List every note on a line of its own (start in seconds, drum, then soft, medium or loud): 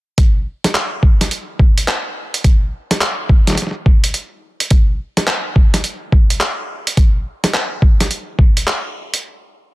0.18 kick loud
0.18 closed hi-hat medium
0.64 snare medium
0.64 closed hi-hat medium
0.75 clap loud
0.75 closed hi-hat medium
1.03 kick loud
1.21 snare soft
1.21 closed hi-hat medium
1.31 closed hi-hat medium
1.59 kick loud
1.78 closed hi-hat medium
1.88 clap loud
1.88 closed hi-hat medium
2.34 closed hi-hat medium
2.44 kick loud
2.44 closed hi-hat medium
2.91 snare medium
2.91 closed hi-hat medium
3.01 clap loud
3.01 closed hi-hat medium
3.29 kick loud
3.47 snare soft
3.47 closed hi-hat medium
3.50 snare soft
3.52 snare soft
3.55 snare soft
3.57 snare soft
3.57 closed hi-hat medium
3.62 snare soft
3.67 snare soft
3.71 snare soft
3.86 kick loud
4.04 closed hi-hat medium
4.14 closed hi-hat medium
4.60 closed hi-hat medium
4.70 kick loud
4.70 closed hi-hat medium
5.17 snare soft
5.17 closed hi-hat medium
5.27 clap loud
5.27 closed hi-hat medium
5.56 kick loud
5.74 snare soft
5.74 closed hi-hat medium
5.84 closed hi-hat medium
6.12 kick loud
6.30 closed hi-hat medium
6.40 clap loud
6.40 closed hi-hat medium
6.87 closed hi-hat medium
6.97 kick loud
6.97 closed hi-hat medium
7.44 snare medium
7.44 closed hi-hat medium
7.54 clap loud
7.54 closed hi-hat medium
7.82 kick loud
8.00 snare soft
8.00 closed hi-hat medium
8.11 closed hi-hat medium
8.39 kick loud
8.57 closed hi-hat medium
8.67 clap loud
8.67 closed hi-hat medium
9.14 closed hi-hat medium